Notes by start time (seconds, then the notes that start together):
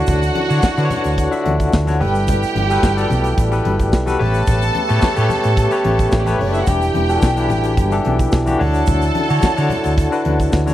Already playing: D3 D4 E4 F#4 C#5 F#5
0.07 D2, kick, closed hi-hat, muted conga, low conga, shaker
0.23 closed hi-hat, muted conga, shaker
0.35 closed hi-hat, high conga
0.49 D3 D4 F#4 C#5, closed hi-hat, shaker
0.62 kick, snare, high conga, shaker
0.77 D3 D4 F#4 B4, closed hi-hat, shaker
0.85 C#5
0.90 closed hi-hat, high conga, low conga, shaker
1.04 D2, closed hi-hat, shaker
1.18 kick, closed hi-hat, shaker
1.31 D3 D4 F4 E5, closed hi-hat, muted conga, shaker
1.39 F#4
1.46 D2, closed hi-hat, high conga
1.60 kick, closed hi-hat, shaker
1.72 D2, kick, snare, muted conga, shaker
1.87 D3 D4 F#4 C#5, snare, closed hi-hat, muted conga, high conga, shaker
2.00 G1 B2 G3 A3 G4 A4 B4 G5, open hi-hat, low conga
2.15 closed hi-hat, shaker
2.27 kick, closed hi-hat, low conga, shaker
2.42 closed hi-hat, muted conga, shaker
2.55 G1, closed hi-hat, high conga
2.69 G3 F#4 A4 B4, closed hi-hat, shaker
2.83 G1, kick, snare, high conga, shaker
2.96 G3 G4 A4 D5, closed hi-hat, shaker
3.10 B1, closed hi-hat, high conga, low conga, shaker
3.24 closed hi-hat, shaker
3.38 A1, kick, closed hi-hat, shaker
3.52 G3 G4 A4 B4, closed hi-hat, muted conga, shaker
3.65 G1, closed hi-hat, high conga
3.80 kick, closed hi-hat, shaker
3.92 B1, kick, snare, muted conga, shaker
4.06 G3 F#4 A4 B4, snare, closed hi-hat, high conga, shaker
4.19 A1 C#3 A3 B3 G4 A4 B4 C#5 A5, open hi-hat, low conga
4.34 closed hi-hat, shaker
4.47 A1, kick, closed hi-hat, muted conga, low conga, shaker
4.62 closed hi-hat, muted conga, shaker
4.75 closed hi-hat, high conga
4.88 A2 A3 G4 B4 C#5, closed hi-hat, shaker
5.02 kick, snare, high conga, shaker
5.16 A2 A3 G4 B4 C#5, closed hi-hat, muted conga, shaker
5.29 closed hi-hat, high conga, low conga, shaker
5.44 A2, closed hi-hat, shaker
5.57 kick, closed hi-hat, muted conga, shaker
5.71 A3 G4 B4 C#5, closed hi-hat, muted conga, shaker
5.84 A1, closed hi-hat, high conga
5.99 kick, closed hi-hat, shaker
6.11 A1, kick, snare, muted conga, shaker
6.19 G3 G4
6.26 A3 G4 A4 B4 C#5, snare, closed hi-hat, muted conga, high conga, shaker
6.34 B3 B4
6.39 F#1 C#4 C#5, open hi-hat, low conga
6.48 D4 D5
6.54 E4 E5, closed hi-hat, shaker
6.61 F#4 F#5
6.66 E1 D3 E3 G3 D4 E4 G4 G5, kick, closed hi-hat, low conga, shaker
6.81 closed hi-hat, muted conga, shaker
6.94 E1, closed hi-hat, high conga
7.09 E3 D4 F#4 A4, closed hi-hat, shaker
7.22 B1, kick, snare, high conga, shaker
7.36 E3 D4 E4 G4, closed hi-hat, shaker
7.50 A1, closed hi-hat, high conga, low conga, shaker
7.64 closed hi-hat, shaker
7.77 G1, kick, closed hi-hat, shaker
7.91 E3 D4 G4 A4, closed hi-hat, muted conga, shaker
8.05 B1, closed hi-hat, high conga
8.19 kick, closed hi-hat, shaker
8.32 B1, kick, snare, shaker
8.46 E3 D4 F#4 G4, closed hi-hat, muted conga, high conga, shaker
8.59 D2 D3 D4 F#4 A4 C#5 A5, open hi-hat, low conga
8.74 closed hi-hat, shaker
8.86 D2, kick, closed hi-hat, low conga, shaker
9.02 closed hi-hat, muted conga, shaker
9.15 closed hi-hat, high conga
9.29 D3 D4 F#4 C#5, closed hi-hat, shaker
9.42 muted fingered electric bass stroke, kick, snare, muted conga, high conga, shaker
9.56 D3 D4 F#4 C#5, closed hi-hat, shaker
9.70 closed hi-hat, high conga, low conga, shaker
9.84 D2, closed hi-hat, shaker
9.98 kick, closed hi-hat, shaker
10.11 D3 D4 F#4 B4, closed hi-hat, shaker
10.25 D2, closed hi-hat, high conga
10.40 kick, closed hi-hat, shaker
10.52 D2, kick, snare, muted conga, shaker
10.66 D3 D4 F#4 C#5, snare, closed hi-hat, muted conga, high conga, shaker